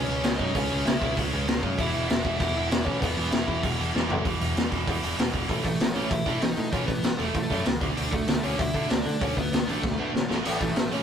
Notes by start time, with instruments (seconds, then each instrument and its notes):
Already playing: lead electric guitar C#4 C#5
0.08 picked electric bass C#2, distorted electric guitar C#3 G#3 C#4
0.24 picked electric bass C#2, distorted electric guitar C#3 G#3 C#4, snare, open hi-hat
0.36 picked electric bass F#2, distorted electric guitar C#3 G#3, lead electric guitar D#4 D#5, kick
0.41 distorted electric guitar C#4
0.54 picked electric bass C#2, distorted electric guitar C#3 G#3 C#4, lead electric guitar C#4 C#5, kick, open hi-hat
0.70 picked electric bass C#2, distorted electric guitar C#3 G#3 C#4
0.85 picked electric bass C#2, distorted electric guitar C#3 G#3 C#4, lead electric guitar E4 E5, snare, open hi-hat
1.02 picked electric bass C#2, distorted electric guitar C#3 G#3 C#4, kick
1.17 picked electric bass C#2, distorted electric guitar C#3 G#3 C#4, kick, open hi-hat
1.33 picked electric bass C#2, distorted electric guitar C#3 G#3 C#4
1.47 picked electric bass C#2, distorted electric guitar C#3 G#3 C#4, snare, open hi-hat
1.63 picked electric bass F#2, distorted electric guitar C#3 G#3 C#4, kick
1.78 picked electric bass E1, distorted electric guitar E2 B2 E3, lead electric guitar E4 E5, kick, open hi-hat
1.94 picked electric bass E1, distorted electric guitar E2 B2 E3
2.08 picked electric bass E1, distorted electric guitar E2 B2 E3, lead electric guitar E4 E5, snare, open hi-hat
2.24 picked electric bass E1, distorted electric guitar E2 B2 E3, kick
2.38 picked electric bass E1, distorted electric guitar E2 B2, lead electric guitar E4 E5, kick, open hi-hat
2.42 distorted electric guitar E3
2.55 picked electric bass E1, distorted electric guitar E2 B2 E3
2.70 picked electric bass E1, distorted electric guitar E2 B2 E3, snare, open hi-hat
2.84 picked electric bass A1, distorted electric guitar E2 B2 E3, lead electric guitar C#4 C#5, kick
3.00 picked electric bass E1, distorted electric guitar E2 B2 E3, lead electric guitar B3 B4, kick, open hi-hat
3.17 picked electric bass E1, distorted electric guitar E2 B2 E3
3.31 picked electric bass E1, distorted electric guitar E2 B2 E3, lead electric guitar E4 E5, snare, open hi-hat
3.47 picked electric bass E1, distorted electric guitar E2 B2 E3, kick
3.63 picked electric bass E1, distorted electric guitar E2 B2 E3, kick, open hi-hat
3.78 picked electric bass E1, distorted electric guitar E2 B2 E3
3.93 picked electric bass E1, distorted electric guitar E2 B2 E3, snare
4.09 picked electric bass A1, distorted electric guitar E2 B2 E3, floor tom
4.24 picked electric bass E1, distorted electric guitar E2 B2 E3, kick, open hi-hat
4.41 picked electric bass E1, distorted electric guitar E2 B2 E3, open hi-hat
4.55 picked electric bass E1, distorted electric guitar E2 B2 E3, snare, open hi-hat
4.71 picked electric bass E1, distorted electric guitar E2 B2 E3, kick, open hi-hat
4.87 picked electric bass E2, distorted electric guitar E2 B2 E3, kick, open hi-hat
5.02 picked electric bass E1, distorted electric guitar E2 B2 E3, open hi-hat
5.17 picked electric bass E1, distorted electric guitar E2 B2 E3, snare, open hi-hat
5.33 picked electric bass E1, distorted electric guitar E2 B2 E3, kick, open hi-hat
5.49 picked electric bass A1, distorted electric guitar A2 E3 A3, kick, open hi-hat
5.64 picked electric bass A1, distorted electric guitar A2 E3, lead electric guitar A3 A4, kick, open hi-hat
5.80 picked electric bass A1, distorted electric guitar A2 E3, snare, open hi-hat
5.94 picked electric bass A1, distorted electric guitar A2 E3 A3, lead electric guitar C#4 C#5, open hi-hat
6.10 picked electric bass A1, distorted electric guitar A2 E3, lead electric guitar E4 E5, kick, open hi-hat
6.26 distorted electric guitar A2 E3 A3, picked electric bass A2, kick, open hi-hat
6.42 picked electric bass A1, distorted electric guitar A2 E3, lead electric guitar D#4 D#5, snare, open hi-hat
6.56 distorted electric guitar A2 E3, picked electric bass A2, open hi-hat
6.72 picked electric bass A1, distorted electric guitar A2 E3 A3, lead electric guitar C#4 C#5, kick, open hi-hat
6.86 picked electric bass A1, distorted electric guitar A2 E3, lead electric guitar B3 B4, kick, open hi-hat
7.03 picked electric bass A1, distorted electric guitar A2 E3, snare, open hi-hat
7.18 picked electric bass E1, distorted electric guitar A2 E3 A3, lead electric guitar A3 A4, open hi-hat
7.34 picked electric bass A1, distorted electric guitar A2 E3, kick, open hi-hat
7.50 picked electric bass F#2, distorted electric guitar A2 E3 A3, kick, open hi-hat
7.65 picked electric bass C#2, distorted electric guitar A2 E3, snare, open hi-hat
7.80 picked electric bass D2, distorted electric guitar D3 A3 D4, kick, open hi-hat
7.95 picked electric bass D2, distorted electric guitar D3 A3 D4, open hi-hat
8.11 picked electric bass D2, distorted electric guitar D3 A3, lead electric guitar A3 A4, kick, open hi-hat
8.27 picked electric bass D2, distorted electric guitar D3 A3, snare, open hi-hat
8.42 picked electric bass D2, distorted electric guitar D3 A3 D4, lead electric guitar C#4 C#5, open hi-hat
8.59 picked electric bass D2, distorted electric guitar D3 A3, lead electric guitar E4 E5, kick, open hi-hat
8.74 distorted electric guitar D3 A3 D4, picked electric bass D3, kick, open hi-hat
8.90 picked electric bass D2, distorted electric guitar D3 A3, lead electric guitar D4 D5, snare, open hi-hat
9.06 picked electric bass D3, distorted electric guitar D3 A3, open hi-hat
9.21 picked electric bass D2, distorted electric guitar D3 A3 D4, lead electric guitar C#4 C#5, kick, open hi-hat
9.37 picked electric bass D2, distorted electric guitar D3 A3, lead electric guitar B3 B4, kick, open hi-hat
9.52 picked electric bass D2, distorted electric guitar D3 A3, snare, open hi-hat
9.67 picked electric bass A1, distorted electric guitar D3 A3 D4, lead electric guitar A3 A4, open hi-hat
9.84 picked electric bass D2, distorted electric guitar D3 A3, kick, snare
9.99 picked electric bass B2, distorted electric guitar D3 A3 D4
10.14 picked electric bass A2, distorted electric guitar D3 A3, snare
10.30 picked electric bass A1, distorted electric guitar A2 E3 A3, snare
10.44 picked electric bass A1, distorted electric guitar A2 E3 A3, open hi-hat, splash
10.61 picked electric bass A1, distorted electric guitar A2 E3, lead electric guitar A3 A4, kick, open hi-hat
10.76 picked electric bass A1, distorted electric guitar A2 E3, snare, open hi-hat
10.92 picked electric bass A1, distorted electric guitar A2 E3 A3, lead electric guitar C#4 C#5, open hi-hat